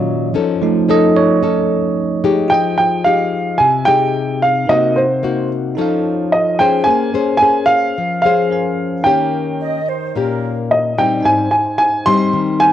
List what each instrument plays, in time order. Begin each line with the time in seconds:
Already playing: nylon-string guitar A#2 F#3 C#4 F4, tine electric piano D#3 F#3 C#4 C#5 D#5
0.34 nylon-string guitar F3 C#4 D#4 A4
0.62 tine electric piano F3 A3 D#4
0.88 nylon-string guitar C#4 D#4 A4, tine electric piano D#5
1.16 tine electric piano C#5
1.42 nylon-string guitar C#4 D#4 A4
2.24 nylon-string guitar G#3 D#4 G4
2.48 nylon-string guitar F3, tine electric piano F4, grand piano G5
2.52 tine electric piano D#5 G5
2.78 grand piano G5
3.04 nylon-string guitar G#3 D#4 G4, grand piano F5
3.58 nylon-string guitar C3, grand piano G#5
3.85 nylon-string guitar G#3 D#4 G4, grand piano G5
4.42 grand piano F5
4.66 nylon-string guitar C3 A#3, tine electric piano D#4 A#4 C5, grand piano D#5
4.70 nylon-string guitar D#4 F#4, tine electric piano F#5
4.96 grand piano C5
5.23 nylon-string guitar A#3 D#4 F#4
5.75 nylon-string guitar F3 C#4 D#4 A4, tine electric piano D#4 A4 C#5
5.81 tine electric piano F5
6.32 grand piano D#5
6.59 nylon-string guitar C#4 G#4 C5, grand piano G5
6.84 nylon-string guitar A#3, tine electric piano C#4 A#4, grand piano G#5
6.88 tine electric piano C5 G#5
7.14 nylon-string guitar C#4 G#4 C5
7.37 grand piano G#5
7.41 nylon-string guitar C#4 G#4 C5
7.66 grand piano F5
7.98 nylon-string guitar F3
8.22 nylon-string guitar C#4 G#4, grand piano F5
8.26 nylon-string guitar C5
8.50 tine electric piano C#4 A#4 C5 G#5
9.03 nylon-string guitar D#3 A#3 C#4 G4, tine electric piano D#4 A#4 C#5, grand piano G5
9.09 tine electric piano G5
9.61 flute section D#5
9.87 flute section C5
10.15 nylon-string guitar A#2 A#3 C#4 G4, flute section A#4
10.71 grand piano D#5
10.98 nylon-string guitar G3 C4 D#4, grand piano G5
11.20 tine electric piano D#4 G#5
11.24 nylon-string guitar G#2, tine electric piano C5 G5, grand piano G#5
11.51 grand piano G#5
11.78 grand piano G#5
12.06 nylon-string guitar G3 C4 D#4, grand piano C6
12.33 nylon-string guitar D#3
12.59 tine electric piano D#4 C5 G#5 G6, grand piano G#5